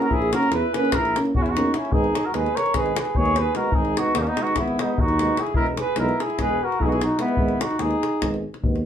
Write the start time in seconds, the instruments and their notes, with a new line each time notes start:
0.01 flugelhorn F#4, cornet A#4, davul high
0.08 tuba A#1, flugelhorn E4, cornet G#4, davul low
0.22 davul high
0.32 trombone A#3, euphonium C#4, flugelhorn F#4, cornet A#4, davul high
0.43 davul high
0.50 tuba E2, flugelhorn E4, cornet B4, davul high
0.73 trombone A#3, flugelhorn G#4, cornet B4, davul high
0.77 euphonium C#4
0.85 davul high
0.92 tuba A#1, flugelhorn E4, cornet A#4, davul high, davul low
1.05 davul high
1.16 trombone A#3, euphonium C#4, davul high
1.25 davul high
1.35 tuba E2, flugelhorn C#4, cornet F#4, davul low
1.42 flugelhorn C#4, cornet E4, davul high
1.50 flugelhorn D#4, cornet F#4
1.56 trombone A#3, euphonium C#4, davul high
1.74 flugelhorn C#4, cornet E4, davul high
1.85 davul high
1.91 tuba G#1, trombone G#3, euphonium B3, flugelhorn D#4, cornet G#4, davul low
2.04 davul high
2.15 davul high
2.25 flugelhorn F#4, cornet A#4
2.32 tuba D#2, trombone G#3, euphonium B3, flugelhorn G#4, cornet B4, davul high
2.46 davul high
2.56 flugelhorn A#4, cornet C#5, davul high
2.66 davul high
2.74 tuba G#1, trombone G#3, euphonium B3, flugelhorn G#4, cornet B4, davul high, davul low
2.86 davul high
2.96 flugelhorn G#4, cornet B4, davul high
3.05 davul high
3.15 tuba D#2, trombone G#3, euphonium B3, flugelhorn G#4, cornet C#5, davul low
3.25 davul high
3.36 cornet B4, davul high
3.40 flugelhorn G#4
3.54 trombone G#3, euphonium B3, flugelhorn F#4, cornet A#4, davul high
3.71 tuba G#1, flugelhorn D#4, cornet G#4, davul low
3.85 davul high
3.97 trombone G#3, euphonium B3, flugelhorn D#4, cornet F#4, davul high
4.14 tuba D#2, flugelhorn B3, cornet D#4, davul high
4.19 flugelhorn A#3, cornet C#4
4.27 flugelhorn B3, cornet D#4, davul high
4.37 trombone G#3, euphonium B3, flugelhorn D#4, davul high
4.43 cornet F#4
4.47 davul high
4.56 tuba G#1, flugelhorn B3, cornet E4, davul high, davul low
4.68 davul high
4.79 trombone G#3, euphonium B3, flugelhorn B3, cornet D#4, davul high
4.98 tuba D#2, flugelhorn D#4, cornet F#4, davul low
5.08 davul high
5.19 trombone G#3, euphonium B3, davul high
5.37 flugelhorn E4, cornet G#4, davul high
5.47 davul high
5.54 tuba E1, trombone G#3, euphonium B3, flugelhorn E4, cornet A#4, davul low
5.66 davul high
5.77 flugelhorn G#4, cornet B4, davul high
5.96 tuba B1, trombone G#3, euphonium B3, flugelhorn E4, cornet A#4, davul high
6.09 davul high
6.20 flugelhorn E4, cornet G#4, davul high
6.30 davul high
6.39 tuba E1, trombone G#3, euphonium B3, flugelhorn G#4, cornet B4, davul high, davul low
6.63 flugelhorn F#4, cornet A#4
6.72 davul high
6.80 tuba B1, trombone G#3, euphonium B3, flugelhorn E4, cornet G#4, davul low
6.85 flugelhorn D#4, cornet F#4
6.90 flugelhorn E4, cornet G#4, davul high
7.01 flugelhorn D#4, cornet F#4, davul high
7.19 trombone G#3, flugelhorn B3, euphonium B3, cornet E4, davul high
7.28 davul high
7.37 tuba G#1, trombone G#3, euphonium B3, davul low
7.48 davul high
7.61 flugelhorn D#4, cornet F#4, davul high
7.71 davul high
7.79 tuba D#2, trombone G#3, euphonium B3, flugelhorn D#4, cornet G#4, davul high
7.91 davul high
8.03 davul high
8.22 tuba G#1, trombone G#3, euphonium B3, davul high, davul low
8.34 davul high
8.54 davul high
8.63 tuba D#2, trombone G#3, euphonium B3, davul low
8.76 davul high